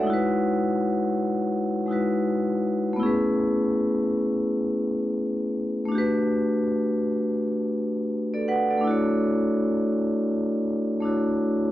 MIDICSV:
0, 0, Header, 1, 2, 480
1, 0, Start_track
1, 0, Key_signature, 4, "major"
1, 0, Tempo, 731707
1, 37, Time_signature, 4, 2, 24, 8
1, 7686, End_track
2, 0, Start_track
2, 0, Title_t, "Vibraphone"
2, 0, Program_c, 0, 11
2, 0, Control_c, 0, 64, 127
2, 0, Note_on_c, 0, 73, 42
2, 0, Note_on_c, 0, 78, 53
2, 1, Note_on_c, 0, 56, 60
2, 22, Note_on_c, 0, 63, 53
2, 44, Note_on_c, 0, 64, 57
2, 47, Control_c, 0, 64, 0
2, 65, Note_on_c, 0, 66, 58
2, 88, Note_on_c, 0, 71, 67
2, 140, Control_c, 0, 64, 127
2, 176, Note_off_c, 0, 78, 0
2, 178, Note_off_c, 0, 73, 0
2, 1194, Note_off_c, 0, 56, 0
2, 1205, Note_off_c, 0, 63, 0
2, 1216, Note_off_c, 0, 64, 0
2, 1221, Note_on_c, 0, 56, 48
2, 1227, Note_off_c, 0, 66, 0
2, 1232, Note_on_c, 0, 63, 46
2, 1239, Note_off_c, 0, 71, 0
2, 1242, Note_on_c, 0, 64, 46
2, 1253, Note_on_c, 0, 66, 46
2, 1264, Note_on_c, 0, 71, 57
2, 1922, Note_on_c, 0, 57, 64
2, 1942, Note_on_c, 0, 59, 49
2, 1949, Note_off_c, 0, 56, 0
2, 1954, Note_off_c, 0, 63, 0
2, 1959, Note_off_c, 0, 64, 0
2, 1965, Note_off_c, 0, 66, 0
2, 1966, Control_c, 0, 64, 0
2, 1966, Note_on_c, 0, 64, 58
2, 1970, Note_off_c, 0, 71, 0
2, 1986, Note_on_c, 0, 61, 56
2, 1987, Note_on_c, 0, 68, 59
2, 2002, Note_off_c, 0, 59, 0
2, 2008, Note_on_c, 0, 71, 70
2, 2080, Control_c, 0, 64, 127
2, 3831, Note_off_c, 0, 57, 0
2, 3839, Note_on_c, 0, 57, 58
2, 3855, Note_off_c, 0, 64, 0
2, 3860, Note_on_c, 0, 62, 57
2, 3865, Note_off_c, 0, 61, 0
2, 3866, Note_off_c, 0, 68, 0
2, 3876, Note_off_c, 0, 71, 0
2, 3881, Note_on_c, 0, 66, 60
2, 3886, Control_c, 0, 64, 0
2, 3904, Note_on_c, 0, 67, 58
2, 3924, Note_on_c, 0, 71, 72
2, 4003, Control_c, 0, 64, 127
2, 5314, Note_off_c, 0, 71, 0
2, 5469, Note_on_c, 0, 74, 56
2, 5474, Note_on_c, 0, 69, 48
2, 5555, Note_off_c, 0, 74, 0
2, 5557, Note_off_c, 0, 69, 0
2, 5564, Note_on_c, 0, 78, 63
2, 5567, Note_on_c, 0, 71, 60
2, 5700, Note_off_c, 0, 78, 0
2, 5702, Note_off_c, 0, 71, 0
2, 5710, Note_on_c, 0, 74, 53
2, 5713, Note_on_c, 0, 69, 43
2, 5750, Note_off_c, 0, 57, 0
2, 5757, Note_on_c, 0, 57, 66
2, 5762, Note_off_c, 0, 62, 0
2, 5773, Note_off_c, 0, 66, 0
2, 5779, Note_on_c, 0, 62, 62
2, 5784, Note_off_c, 0, 67, 0
2, 5801, Note_on_c, 0, 64, 58
2, 5806, Control_c, 0, 64, 0
2, 5822, Note_on_c, 0, 66, 60
2, 5844, Note_on_c, 0, 73, 70
2, 5917, Control_c, 0, 64, 127
2, 5935, Note_off_c, 0, 74, 0
2, 5936, Note_off_c, 0, 69, 0
2, 7191, Note_off_c, 0, 57, 0
2, 7201, Note_off_c, 0, 62, 0
2, 7212, Note_off_c, 0, 64, 0
2, 7219, Note_on_c, 0, 57, 48
2, 7223, Note_off_c, 0, 66, 0
2, 7230, Note_on_c, 0, 62, 50
2, 7234, Note_off_c, 0, 73, 0
2, 7241, Note_on_c, 0, 64, 43
2, 7251, Note_on_c, 0, 66, 47
2, 7261, Note_on_c, 0, 73, 52
2, 7686, Note_off_c, 0, 57, 0
2, 7686, Note_off_c, 0, 62, 0
2, 7686, Note_off_c, 0, 64, 0
2, 7686, Note_off_c, 0, 66, 0
2, 7686, Note_off_c, 0, 73, 0
2, 7686, End_track
0, 0, End_of_file